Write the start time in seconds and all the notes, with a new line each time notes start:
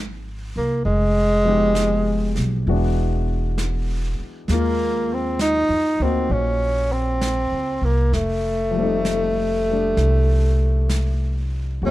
Already playing: G#1 F3 D#4 F4 G#4 C5
0.56 C2 A#3
0.84 F1 G#3, brush sweep
1.45 F3 G#3 B3
1.49 D#4 G4
1.75 brush sweep, snare, hi-hat pedal
2.36 B1, snare
2.66 E1 E3 G#3 B3 F#4, brush sweep
2.70 D4
3.58 brush sweep, snare, hi-hat pedal
4.19 muted upright bass stroke
4.48 D#2 G#3 A#3, brush sweep, snare
4.54 F4
5.14 C4
5.39 D#4, brush sweep, snare, hi-hat pedal
5.69 F2
5.99 D2 A#3 C4 D#4 C5
6.04 F#4
6.30 A#1 C#4, brush sweep
6.92 C4
7.21 brush sweep, snare, hi-hat pedal
7.52 C#2
7.82 C2 A#3
8.12 F1 A3, brush sweep, snare
8.71 F3 G3
8.77 A3 C4
8.83 D#4
9.05 brush sweep, snare, hi-hat pedal
9.70 G3 A3 D4
9.97 C2, brush sweep, snare
10.89 brush sweep, snare, hi-hat pedal
11.82 E2 G#3 C#4 F#4, brush sweep
11.86 A#3 B3